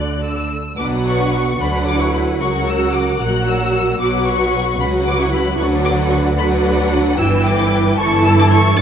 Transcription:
Already playing: D2 D3 F#4 D5 F#6
0.22 E6
0.77 B1 B2 F#3 D4 B4 F#5 D6
1.04 C#6
1.58 D2 D3 F#3 D4 B4 F#5 B5
1.86 D6
1.99 E4 C#6
2.13 B5
2.38 C#2 C#3 F#3 F#4 A#4 F#5 C#6
2.67 E6
2.94 D6
3.19 A#1 A#2 F#3 F#4 A#4 F#5 F#6
3.46 E6
3.99 B1 B2 F#3 F#4 B4 F#5 D6
4.26 C#6
4.79 C#2 C#3 F#3 F#4 B4 F#5 B5
5.06 D6
5.20 E4 C#6
5.32 B5
5.58 D2 D3 F#3 D4 B4 F#5 C#6
5.84 D6
6.10 C#6
6.37 F#3 D4 B4 F#5 B5
7.17 G1 G2 E3 E4 B4 G5 E6
7.45 D6
7.97 G1 G2 E3 E4 A4 A5 C#6
8.25 E6
8.38 D6
8.51 C#6
8.78 F#1 F#2 F#3 D4 A6

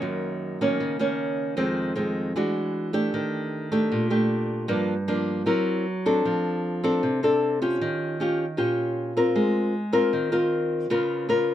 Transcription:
Already playing: D#3 A#3 C#4
0.02 F#2
0.61 D#3 A#3 C#4
0.80 C#3
0.99 D#3 A#3 C#4
1.57 F2 D#3 G#3 C4
1.96 D#3 G#3 C4
2.36 E3 G#3 D4 F#4
2.93 A3 D4 G4
3.14 D#3
3.72 A3 D4 G4
3.92 A#2
4.10 A3 D4 G4
4.68 G2 F3 A#3 D4
5.08 F3 A#3 D4
5.46 F#3 C4 E4 A#4
6.06 C4 D4 A4
6.25 F3
6.84 C4 D4 A4
7.03 C3
7.23 C4 D4 A4
7.62 C#4 F4 G4
7.81 D#3
8.20 C#4 F4 G4
8.57 A#2 C#4 F4 G4
9.17 C4 F4 A#4
9.36 G#3
9.93 C4 F4 A#4
10.13 D#3
10.32 C4 F4 A#4
10.90 C#3 B3 F4 A#4
11.29 B3 F4 A#4

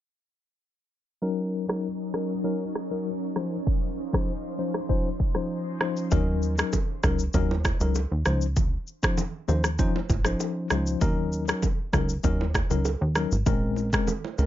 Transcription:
1.22 F#3 C#4 D#4 A#4
1.68 F#3 C#4 D#4 A#4, cross-stick
2.14 F#3 C#4 D#4 A#4, cross-stick
2.44 F#3 C#4 D#4 A#4
2.75 cross-stick
2.91 F#3 C#4 D#4 A#4
3.36 F3 C#4 D#4 C5, cross-stick
3.67 kick, shaker
3.98 shaker
4.13 F3 C#4 D#4 C5, kick, cross-stick, shaker
4.28 shaker
4.58 F3 C#4 D#4 C5, shaker
4.74 cross-stick, shaker
4.89 F3 C#4 D#4 C5, kick, shaker
5.20 kick, shaker
5.35 F3 C#4 D#4 C5, cross-stick, shaker
5.50 shaker
5.81 F3 C#4 D#4 C5, cross-stick, shaker
5.97 shaker
6.11 D#2 F#3 C#4 D#4 A#4, kick, low conga, shaker
6.42 shaker
6.58 F#3 C#4 D#4 A#4, cross-stick, shaker
6.73 kick, high bongo, low conga, shaker
7.03 C#2 F#3 C#4 D#4 A#4, kick, cross-stick, high bongo, shaker
7.19 shaker
7.34 D#2 F#3 C#4 D#4 A#4, kick, low conga, shaker
7.51 low bongo
7.65 kick, cross-stick, low bongo, shaker
7.80 C#2 F#3 C#4 D#4 A#4, high bongo, shaker
7.95 high bongo, shaker
8.11 D#2
8.25 C#2 F3 C#4 D#4 C5, cross-stick, shaker
8.42 shaker
8.56 kick, low conga, shaker
8.87 shaker
9.03 F3 C#4 D#4 C5, kick, cross-stick, shaker
9.17 high bongo, low conga, shaker
9.48 D#2 F3 C#4 D#4 C5, high bongo, shaker
9.64 cross-stick, shaker
9.79 F3 C#4 D#4 C5, kick, low conga, shaker
9.96 low bongo
10.09 G#1, kick, low bongo, shaker
10.25 F3 C#4 D#4 C5, cross-stick, high bongo, shaker
10.40 high bongo, shaker
10.70 C#2 F3 C#4 D#4 C5, cross-stick, shaker
10.87 shaker
11.01 D#2 F#3 C#4 D#4 A#4, kick, low conga, shaker
11.32 shaker
11.48 F#3 C#4 D#4 A#4, cross-stick, shaker
11.62 kick, high bongo, low conga, shaker
11.93 C#2 F#3 C#4 D#4 A#4, kick, cross-stick, high bongo, shaker
12.09 shaker
12.23 D#2 F#3 C#4 D#4 A#4, kick, low conga, shaker
12.41 low bongo
12.54 kick, cross-stick, low bongo, shaker
12.70 C#2 F#3 C#4 D#4 A#4, high bongo, shaker
12.85 high bongo, shaker
13.01 D#2
13.15 F#3 C#4 D#4 A#4, cross-stick, shaker
13.32 G#1, shaker
13.46 A#1 G#3 C4 C#4 A#4, kick, low conga, shaker
13.76 low bongo, shaker
13.93 G#3 C4 C#4 A#4, kick, cross-stick, shaker
14.07 high bongo, low conga, shaker
14.24 low bongo
14.38 C#2 G#3 C4 C#4 A#4, high bongo, shaker

